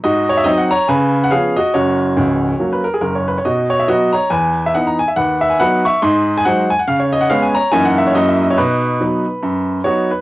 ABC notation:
X:1
M:4/4
L:1/16
Q:"Swing" 1/4=141
K:B
V:1 name="Grand piano"
[Fd]2 c e d f [ca]2 [Bg]3 f [G^e]2 [Fd]2 | [Fc]8- [Fc] B A G A c B c | [Fd]2 c e [Fd]2 [ca]2 [Bg]3 e f a g e | [Bf]2 e g [Bf]2 [ec']2 [d^b]3 g [^Bf]2 g f |
^e c d f e g [ca]2 g f =e c d e d c | [DB]12 [Fc]2 B2 |]
V:2 name="Grand piano" clef=bass
G,,4 [F,^B,D]4 C,4 [^E,=B,C]4 | [F,,,F,,]4 [C,,,C,,]4 [F,A,C]4 [F,,,F,,]4 | B,,4 [F,B,]4 E,,4 [E,B,D]4 | D,,4 [F,B,D]4 G,,4 [F,G,D]4 |
C,4 [G,B,C]4 [F,,E,A,D]4 [F,,F,A,E]4 | B,,4 [F,B,D]4 F,,4 [F,B,D]4 |]